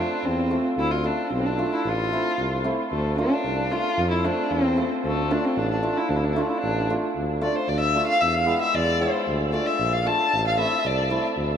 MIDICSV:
0, 0, Header, 1, 4, 480
1, 0, Start_track
1, 0, Tempo, 530035
1, 710, Time_signature, 2, 2, 24, 8
1, 10478, End_track
2, 0, Start_track
2, 0, Title_t, "Violin"
2, 0, Program_c, 0, 40
2, 0, Note_on_c, 0, 62, 79
2, 229, Note_on_c, 0, 60, 78
2, 243, Note_off_c, 0, 62, 0
2, 591, Note_off_c, 0, 60, 0
2, 717, Note_on_c, 0, 64, 88
2, 825, Note_on_c, 0, 65, 76
2, 838, Note_off_c, 0, 64, 0
2, 959, Note_on_c, 0, 62, 75
2, 973, Note_off_c, 0, 65, 0
2, 1192, Note_off_c, 0, 62, 0
2, 1198, Note_on_c, 0, 60, 79
2, 1312, Note_on_c, 0, 62, 72
2, 1325, Note_off_c, 0, 60, 0
2, 1562, Note_on_c, 0, 64, 76
2, 1575, Note_off_c, 0, 62, 0
2, 1583, Note_on_c, 0, 62, 67
2, 1597, Note_off_c, 0, 64, 0
2, 1624, Note_on_c, 0, 64, 73
2, 1638, Note_off_c, 0, 62, 0
2, 1698, Note_on_c, 0, 65, 81
2, 1711, Note_off_c, 0, 64, 0
2, 2411, Note_off_c, 0, 65, 0
2, 2637, Note_on_c, 0, 57, 67
2, 2863, Note_off_c, 0, 57, 0
2, 2878, Note_on_c, 0, 62, 83
2, 3362, Note_on_c, 0, 65, 96
2, 3375, Note_off_c, 0, 62, 0
2, 3714, Note_off_c, 0, 65, 0
2, 3720, Note_on_c, 0, 64, 79
2, 3844, Note_on_c, 0, 62, 79
2, 3858, Note_off_c, 0, 64, 0
2, 4085, Note_on_c, 0, 60, 92
2, 4098, Note_off_c, 0, 62, 0
2, 4445, Note_off_c, 0, 60, 0
2, 4580, Note_on_c, 0, 57, 78
2, 4812, Note_on_c, 0, 62, 77
2, 4826, Note_off_c, 0, 57, 0
2, 4932, Note_on_c, 0, 60, 78
2, 4946, Note_off_c, 0, 62, 0
2, 5051, Note_on_c, 0, 62, 87
2, 5064, Note_off_c, 0, 60, 0
2, 5164, Note_off_c, 0, 62, 0
2, 5170, Note_on_c, 0, 62, 77
2, 5405, Note_on_c, 0, 64, 72
2, 5419, Note_off_c, 0, 62, 0
2, 5509, Note_on_c, 0, 62, 69
2, 5523, Note_off_c, 0, 64, 0
2, 5579, Note_on_c, 0, 64, 62
2, 5593, Note_off_c, 0, 62, 0
2, 5652, Note_on_c, 0, 62, 59
2, 5665, Note_off_c, 0, 64, 0
2, 5728, Note_on_c, 0, 64, 63
2, 5742, Note_off_c, 0, 62, 0
2, 5803, Note_on_c, 0, 62, 55
2, 5817, Note_off_c, 0, 64, 0
2, 5877, Note_on_c, 0, 64, 60
2, 5891, Note_off_c, 0, 62, 0
2, 5958, Note_on_c, 0, 62, 88
2, 5972, Note_off_c, 0, 64, 0
2, 6247, Note_off_c, 0, 62, 0
2, 6722, Note_on_c, 0, 74, 75
2, 6805, Note_off_c, 0, 74, 0
2, 6805, Note_on_c, 0, 74, 51
2, 6843, Note_on_c, 0, 72, 77
2, 6856, Note_off_c, 0, 74, 0
2, 6959, Note_on_c, 0, 74, 88
2, 6973, Note_off_c, 0, 72, 0
2, 7061, Note_off_c, 0, 74, 0
2, 7066, Note_on_c, 0, 76, 88
2, 7294, Note_off_c, 0, 76, 0
2, 7311, Note_on_c, 0, 77, 104
2, 7430, Note_on_c, 0, 76, 91
2, 7443, Note_off_c, 0, 77, 0
2, 7554, Note_on_c, 0, 77, 97
2, 7568, Note_off_c, 0, 76, 0
2, 7794, Note_off_c, 0, 77, 0
2, 7804, Note_on_c, 0, 76, 89
2, 7923, Note_on_c, 0, 74, 102
2, 7937, Note_off_c, 0, 76, 0
2, 8162, Note_on_c, 0, 72, 77
2, 8176, Note_off_c, 0, 74, 0
2, 8397, Note_off_c, 0, 72, 0
2, 8623, Note_on_c, 0, 74, 78
2, 8749, Note_on_c, 0, 76, 80
2, 8762, Note_off_c, 0, 74, 0
2, 8995, Note_on_c, 0, 77, 88
2, 9008, Note_off_c, 0, 76, 0
2, 9119, Note_on_c, 0, 81, 99
2, 9133, Note_off_c, 0, 77, 0
2, 9472, Note_off_c, 0, 81, 0
2, 9485, Note_on_c, 0, 77, 84
2, 9587, Note_off_c, 0, 77, 0
2, 9595, Note_on_c, 0, 76, 84
2, 9835, Note_on_c, 0, 74, 82
2, 9848, Note_off_c, 0, 76, 0
2, 10188, Note_off_c, 0, 74, 0
2, 10478, End_track
3, 0, Start_track
3, 0, Title_t, "Hammered dulcimer"
3, 0, Program_c, 1, 15
3, 0, Note_on_c, 1, 57, 56
3, 0, Note_on_c, 1, 60, 51
3, 0, Note_on_c, 1, 65, 54
3, 98, Note_off_c, 1, 57, 0
3, 100, Note_off_c, 1, 60, 0
3, 103, Note_off_c, 1, 65, 0
3, 457, Note_on_c, 1, 57, 51
3, 457, Note_on_c, 1, 60, 54
3, 463, Note_on_c, 1, 65, 62
3, 583, Note_off_c, 1, 60, 0
3, 584, Note_off_c, 1, 57, 0
3, 587, Note_off_c, 1, 65, 0
3, 937, Note_on_c, 1, 57, 55
3, 944, Note_on_c, 1, 62, 52
3, 946, Note_on_c, 1, 65, 57
3, 1066, Note_off_c, 1, 57, 0
3, 1069, Note_off_c, 1, 62, 0
3, 1070, Note_off_c, 1, 65, 0
3, 1432, Note_on_c, 1, 62, 47
3, 1435, Note_on_c, 1, 57, 53
3, 1441, Note_on_c, 1, 65, 63
3, 1554, Note_off_c, 1, 62, 0
3, 1556, Note_off_c, 1, 57, 0
3, 1559, Note_off_c, 1, 65, 0
3, 1924, Note_on_c, 1, 57, 54
3, 1930, Note_on_c, 1, 60, 49
3, 1931, Note_on_c, 1, 64, 66
3, 2041, Note_off_c, 1, 57, 0
3, 2044, Note_off_c, 1, 60, 0
3, 2045, Note_off_c, 1, 64, 0
3, 2392, Note_on_c, 1, 57, 58
3, 2394, Note_on_c, 1, 60, 65
3, 2402, Note_on_c, 1, 64, 65
3, 2517, Note_off_c, 1, 57, 0
3, 2517, Note_off_c, 1, 60, 0
3, 2522, Note_off_c, 1, 64, 0
3, 2882, Note_on_c, 1, 57, 51
3, 2886, Note_on_c, 1, 65, 68
3, 2889, Note_on_c, 1, 62, 50
3, 3002, Note_off_c, 1, 57, 0
3, 3004, Note_off_c, 1, 65, 0
3, 3006, Note_off_c, 1, 62, 0
3, 3356, Note_on_c, 1, 57, 54
3, 3365, Note_on_c, 1, 62, 50
3, 3371, Note_on_c, 1, 65, 60
3, 3480, Note_off_c, 1, 57, 0
3, 3484, Note_off_c, 1, 62, 0
3, 3488, Note_off_c, 1, 65, 0
3, 3844, Note_on_c, 1, 57, 61
3, 3848, Note_on_c, 1, 60, 59
3, 3853, Note_on_c, 1, 65, 62
3, 3964, Note_off_c, 1, 57, 0
3, 3966, Note_off_c, 1, 60, 0
3, 3968, Note_off_c, 1, 65, 0
3, 4316, Note_on_c, 1, 57, 55
3, 4320, Note_on_c, 1, 60, 54
3, 4325, Note_on_c, 1, 65, 52
3, 4440, Note_off_c, 1, 57, 0
3, 4442, Note_off_c, 1, 60, 0
3, 4445, Note_off_c, 1, 65, 0
3, 4806, Note_on_c, 1, 57, 63
3, 4809, Note_on_c, 1, 62, 58
3, 4813, Note_on_c, 1, 65, 74
3, 4925, Note_off_c, 1, 57, 0
3, 4926, Note_off_c, 1, 62, 0
3, 4928, Note_off_c, 1, 65, 0
3, 5275, Note_on_c, 1, 57, 59
3, 5278, Note_on_c, 1, 62, 53
3, 5283, Note_on_c, 1, 65, 69
3, 5399, Note_off_c, 1, 57, 0
3, 5400, Note_off_c, 1, 62, 0
3, 5403, Note_off_c, 1, 65, 0
3, 5761, Note_on_c, 1, 57, 70
3, 5763, Note_on_c, 1, 62, 55
3, 5776, Note_on_c, 1, 65, 73
3, 5882, Note_off_c, 1, 57, 0
3, 5882, Note_off_c, 1, 62, 0
3, 5889, Note_off_c, 1, 65, 0
3, 6244, Note_on_c, 1, 57, 61
3, 6248, Note_on_c, 1, 62, 53
3, 6252, Note_on_c, 1, 65, 68
3, 6362, Note_off_c, 1, 57, 0
3, 6364, Note_off_c, 1, 62, 0
3, 6366, Note_off_c, 1, 65, 0
3, 6714, Note_on_c, 1, 57, 69
3, 6715, Note_on_c, 1, 62, 61
3, 6719, Note_on_c, 1, 65, 66
3, 6837, Note_off_c, 1, 57, 0
3, 6837, Note_off_c, 1, 62, 0
3, 6839, Note_off_c, 1, 65, 0
3, 7201, Note_on_c, 1, 57, 65
3, 7203, Note_on_c, 1, 62, 51
3, 7210, Note_on_c, 1, 65, 62
3, 7319, Note_off_c, 1, 57, 0
3, 7320, Note_off_c, 1, 62, 0
3, 7324, Note_off_c, 1, 65, 0
3, 7657, Note_on_c, 1, 56, 57
3, 7661, Note_on_c, 1, 59, 60
3, 7666, Note_on_c, 1, 64, 72
3, 7788, Note_off_c, 1, 59, 0
3, 7790, Note_off_c, 1, 64, 0
3, 8136, Note_off_c, 1, 56, 0
3, 8147, Note_on_c, 1, 56, 61
3, 8151, Note_on_c, 1, 59, 58
3, 8157, Note_on_c, 1, 64, 60
3, 8272, Note_off_c, 1, 59, 0
3, 8275, Note_off_c, 1, 64, 0
3, 8437, Note_off_c, 1, 56, 0
3, 8628, Note_on_c, 1, 57, 60
3, 8634, Note_on_c, 1, 62, 53
3, 8636, Note_on_c, 1, 65, 66
3, 8749, Note_off_c, 1, 57, 0
3, 8752, Note_off_c, 1, 62, 0
3, 8753, Note_off_c, 1, 65, 0
3, 9103, Note_on_c, 1, 62, 49
3, 9106, Note_on_c, 1, 57, 57
3, 9114, Note_on_c, 1, 65, 64
3, 9225, Note_off_c, 1, 62, 0
3, 9227, Note_off_c, 1, 57, 0
3, 9231, Note_off_c, 1, 65, 0
3, 9574, Note_on_c, 1, 57, 64
3, 9576, Note_on_c, 1, 60, 51
3, 9583, Note_on_c, 1, 64, 67
3, 9699, Note_off_c, 1, 57, 0
3, 9700, Note_off_c, 1, 60, 0
3, 9704, Note_off_c, 1, 64, 0
3, 10056, Note_on_c, 1, 57, 58
3, 10056, Note_on_c, 1, 60, 46
3, 10064, Note_on_c, 1, 64, 65
3, 10179, Note_off_c, 1, 57, 0
3, 10179, Note_off_c, 1, 60, 0
3, 10183, Note_off_c, 1, 64, 0
3, 10478, End_track
4, 0, Start_track
4, 0, Title_t, "Tuba"
4, 0, Program_c, 2, 58
4, 224, Note_on_c, 2, 40, 69
4, 515, Note_off_c, 2, 40, 0
4, 702, Note_on_c, 2, 38, 83
4, 995, Note_off_c, 2, 38, 0
4, 1187, Note_on_c, 2, 35, 77
4, 1479, Note_off_c, 2, 35, 0
4, 1677, Note_on_c, 2, 33, 86
4, 1966, Note_off_c, 2, 33, 0
4, 2156, Note_on_c, 2, 36, 81
4, 2446, Note_off_c, 2, 36, 0
4, 2640, Note_on_c, 2, 38, 87
4, 2929, Note_off_c, 2, 38, 0
4, 3120, Note_on_c, 2, 36, 78
4, 3409, Note_off_c, 2, 36, 0
4, 3597, Note_on_c, 2, 41, 99
4, 3887, Note_off_c, 2, 41, 0
4, 4081, Note_on_c, 2, 40, 78
4, 4370, Note_off_c, 2, 40, 0
4, 4564, Note_on_c, 2, 38, 87
4, 4852, Note_off_c, 2, 38, 0
4, 5041, Note_on_c, 2, 33, 86
4, 5330, Note_off_c, 2, 33, 0
4, 5517, Note_on_c, 2, 38, 98
4, 5806, Note_off_c, 2, 38, 0
4, 6003, Note_on_c, 2, 33, 87
4, 6290, Note_off_c, 2, 33, 0
4, 6484, Note_on_c, 2, 38, 76
4, 6770, Note_off_c, 2, 38, 0
4, 6957, Note_on_c, 2, 38, 85
4, 7244, Note_off_c, 2, 38, 0
4, 7440, Note_on_c, 2, 40, 79
4, 7725, Note_off_c, 2, 40, 0
4, 7918, Note_on_c, 2, 40, 87
4, 8203, Note_off_c, 2, 40, 0
4, 8396, Note_on_c, 2, 38, 88
4, 8681, Note_off_c, 2, 38, 0
4, 8867, Note_on_c, 2, 34, 86
4, 9154, Note_off_c, 2, 34, 0
4, 9355, Note_on_c, 2, 33, 88
4, 9639, Note_off_c, 2, 33, 0
4, 9822, Note_on_c, 2, 36, 79
4, 10109, Note_off_c, 2, 36, 0
4, 10296, Note_on_c, 2, 38, 83
4, 10478, Note_off_c, 2, 38, 0
4, 10478, End_track
0, 0, End_of_file